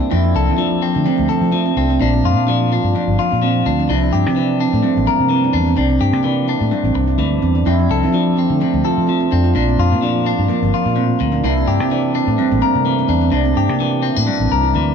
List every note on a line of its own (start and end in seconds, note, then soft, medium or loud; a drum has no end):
0.00 0.11 A#3 medium
0.11 2.00 F2 medium
0.11 0.32 F2 medium
0.11 0.81 C4 soft
0.11 0.24 E4 medium
0.24 0.46 D4 medium
0.35 0.51 C2 medium
0.35 1.28 A4 medium
0.47 0.89 F3 medium
0.47 0.58 C4 medium
0.58 1.51 F3 medium
0.58 0.81 D4 medium
0.82 1.76 C4 medium
0.82 0.95 C4 medium
0.95 1.05 D3 medium
0.95 1.05 A3 medium
1.06 1.53 C3 medium
1.06 1.18 C4 medium
1.17 1.28 D2 medium
1.17 1.28 A3 medium
1.29 1.41 C4 medium
1.29 1.98 A4 medium
1.41 1.71 F3 medium
1.41 1.52 A3 medium
1.52 1.97 F3 medium
1.52 1.64 C4 medium
1.66 1.76 C4 medium
1.76 1.97 C2 medium
1.76 2.01 C4 medium
1.76 1.89 D4 medium
1.90 2.00 C4 medium
2.00 2.20 A#1 medium
2.00 2.95 A#2 medium
2.00 2.12 D4 medium
2.00 2.72 D4 medium
2.14 2.36 C4 medium
2.23 2.37 F2 medium
2.23 3.18 F4 medium
2.37 2.77 A#2 medium
2.37 2.47 A#3 medium
2.47 3.41 F3 medium
2.47 2.70 D4 medium
2.72 3.66 D4 medium
2.72 2.94 F4 medium
2.84 2.93 G2 medium
2.95 3.89 F2 medium
2.95 3.07 D4 medium
3.08 3.17 G1 medium
3.19 3.90 F4 medium
3.32 3.61 A#2 medium
3.32 3.42 D4 medium
3.42 3.87 F3 medium
3.42 3.65 C4 medium
3.66 3.86 D2 medium
3.66 3.78 F3 medium
3.66 3.89 D4 medium
3.80 3.89 D4 medium
3.89 4.09 C2 medium
3.89 4.36 C3 medium
3.89 4.60 D4 medium
3.89 4.02 E4 medium
4.03 4.25 D4 medium
4.13 4.26 G2 medium
4.13 5.07 G4 medium
4.26 4.66 C3 medium
4.26 4.36 C4 medium
4.36 5.28 E3 medium
4.36 4.59 D4 medium
4.60 4.73 C4 medium
4.60 5.52 D4 medium
4.73 4.82 A2 medium
4.73 4.83 A3 medium
4.83 5.75 G2 medium
4.83 4.96 C4 medium
4.97 5.06 A1 medium
4.97 5.07 A#3 medium
5.07 5.20 C4 medium
5.07 5.75 A#4 medium
5.20 5.49 C3 medium
5.20 5.30 A3 medium
5.29 5.75 E3 medium
5.29 5.43 C4 medium
5.44 5.53 D4 medium
5.53 5.74 E2 medium
5.53 5.75 D4 medium
5.53 5.66 D4 medium
5.67 5.77 C4 medium
5.76 5.98 C2 medium
5.76 6.25 C3 medium
5.76 5.89 D4 medium
5.76 6.48 D4 soft
5.90 6.13 C4 medium
6.01 6.13 G2 medium
6.01 6.95 G4 medium
6.13 6.54 C3 medium
6.13 6.24 A#3 medium
6.24 7.17 E3 medium
6.24 6.47 D4 medium
6.47 7.43 D4 medium
6.47 6.70 E4 medium
6.61 6.70 A2 medium
6.71 7.64 G2 medium
6.71 6.84 D4 medium
6.84 6.93 A1 medium
6.84 7.07 C4 medium
6.95 7.17 C2 medium
6.95 muted clean electric guitar stroke medium
7.07 7.18 E4 medium
7.18 7.40 D2 medium
7.18 7.64 E3 medium
7.18 7.41 D4 medium
7.42 7.64 E2 medium
7.42 7.55 C4 medium
7.55 7.66 D4 medium
7.66 9.55 F2 medium
7.66 7.87 F2 medium
7.66 8.37 C4 medium
7.66 7.79 E4 medium
7.79 8.02 D4 medium
7.90 8.05 C2 medium
7.90 8.84 A4 medium
8.03 8.43 F3 medium
8.03 8.13 C4 medium
8.13 9.08 F3 medium
8.13 8.36 D4 medium
8.37 8.49 C4 medium
8.37 9.31 C4 medium
8.50 8.59 D3 medium
8.50 8.60 A3 medium
8.61 9.08 C3 medium
8.61 8.73 C4 medium
8.74 8.83 D2 medium
8.74 8.84 A3 medium
8.84 8.97 F4 medium
8.84 9.53 A4 medium
8.98 9.27 F3 medium
9.07 9.53 F3 medium
9.07 9.19 C4 medium
9.20 9.31 C4 medium
9.31 9.52 F2 medium
9.31 9.55 C4 medium
9.31 9.44 D4 medium
9.44 9.54 F4 medium
9.55 9.75 A#1 medium
9.55 10.49 A#2 medium
9.55 9.67 D4 medium
9.55 10.26 D4 medium
9.69 9.91 C4 medium
9.78 9.93 F2 medium
9.78 10.73 F4 medium
9.91 10.31 A#2 medium
9.91 10.02 A#3 medium
10.02 11.41 F3 medium
10.02 10.25 D4 medium
10.26 11.45 D4 medium
10.26 10.49 F4 medium
10.39 10.48 G2 loud
10.48 10.95 F2 medium
10.48 10.62 A#3 medium
10.62 10.71 G1 medium
10.62 10.85 A#3 medium
10.74 11.44 F4 medium
10.86 11.15 A#2 medium
10.86 10.96 D4 medium
10.96 11.20 A2 medium
10.96 11.19 C4 medium
11.20 11.41 D2 medium
11.20 11.44 A#2 medium
11.20 11.32 A#3 medium
11.32 11.43 D4 medium
11.43 11.64 C2 loud
11.43 11.91 C3 medium
11.43 12.15 D4 medium
11.43 11.56 E4 medium
11.57 11.79 D4 medium
11.67 11.80 G2 medium
11.67 12.62 G4 medium
11.80 12.20 C3 medium
11.80 11.91 C4 medium
11.91 12.84 E3 medium
11.91 12.14 D4 medium
12.15 12.27 C4 medium
12.15 13.08 D4 medium
12.27 12.37 A2 medium
12.27 12.38 A3 medium
12.38 13.30 G2 medium
12.38 12.51 C4 medium
12.51 12.61 A1 medium
12.51 12.62 A#3 medium
12.62 12.74 C4 medium
12.62 13.30 A#4 medium
12.75 13.04 C3 medium
12.75 12.85 A3 medium
12.85 13.30 E3 medium
12.85 12.98 C4 medium
12.99 13.09 C4 medium
13.09 13.29 E2 medium
13.09 13.21 D4 medium
13.09 13.30 D4 medium
13.21 13.32 C4 medium
13.31 13.53 C2 loud
13.31 13.80 C3 medium
13.31 13.44 D4 medium
13.31 14.02 D4 medium
13.45 13.68 C4 medium
13.56 13.69 G2 loud
13.56 14.51 G4 medium
13.69 14.09 C3 medium
13.69 13.80 A#3 medium
13.80 14.74 E3 medium
13.80 14.03 D4 medium
14.03 14.16 C4 medium
14.03 14.26 E4 medium
14.16 14.26 A2 medium
14.16 14.95 D4 soft
14.27 14.95 G2 medium
14.27 14.40 D4 medium
14.40 14.49 A1 medium
14.40 14.63 C4 medium
14.51 14.73 C2 medium
14.51 14.95 A#4 medium
14.63 14.74 E4 medium
14.74 14.95 D2 medium
14.74 14.95 E3 medium
14.74 14.95 D4 medium